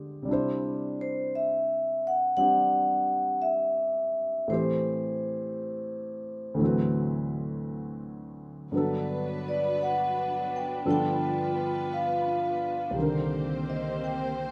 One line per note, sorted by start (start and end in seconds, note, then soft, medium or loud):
0.00 0.28 G2 soft
0.00 0.28 D3 soft
0.00 0.28 G#3 soft
0.00 0.28 B3 soft
0.00 0.27 D4 soft
0.00 0.28 F4 soft
0.00 0.29 G4 soft
0.00 0.28 G#4 soft
0.22 4.46 C3 soft
0.22 2.36 G3 soft
0.29 2.38 D4 soft
0.29 4.50 E4 soft
0.33 4.51 C5 medium
1.01 1.32 C5 medium
1.35 2.09 E5 medium
2.07 2.36 F#5 medium
2.37 4.48 G3 soft
2.37 4.49 C4 soft
2.37 4.49 D4 soft
2.37 4.50 G4 soft
2.37 3.46 F#5 medium
3.42 4.51 E5 medium
4.48 6.55 A2 soft
4.48 6.57 E3 soft
4.48 6.61 C4 soft
4.48 6.57 C5 medium
4.52 6.62 G4 soft
4.52 6.62 C5 soft
6.54 8.69 D2 soft
6.54 8.71 A2 soft
6.59 8.71 E3 soft
6.59 8.72 F#3 soft
6.64 8.74 C4 soft
6.64 8.75 B4 soft
8.72 10.84 G2 soft
8.72 10.84 D3 soft
8.72 10.85 F#3 soft
8.72 10.83 F#3 soft
8.72 10.82 B3 soft
8.72 10.85 B3 soft
8.72 12.92 D4 medium
8.72 10.82 B4 medium
8.77 10.85 A4 soft
9.49 9.81 D5 medium
9.82 10.55 F#5 medium
10.56 10.88 G5 medium
10.85 12.96 G2 soft
10.85 12.96 D3 soft
10.85 12.96 F3 soft
10.85 12.96 B3 soft
10.85 12.94 B3 soft
10.85 12.94 F4 soft
10.85 12.96 A4 soft
10.85 12.94 B4 medium
10.91 11.96 G5 medium
11.94 12.93 F5 medium
12.91 14.51 C2 soft
12.91 14.51 C3 soft
12.91 14.51 C5 medium
12.95 14.51 D3 soft
12.95 14.51 D#3 soft
12.95 14.51 A#3 medium
12.95 14.51 C4 medium
12.95 14.51 G4 soft
13.02 14.51 A#4 soft
13.70 14.03 D#5 medium
14.04 14.51 G5 medium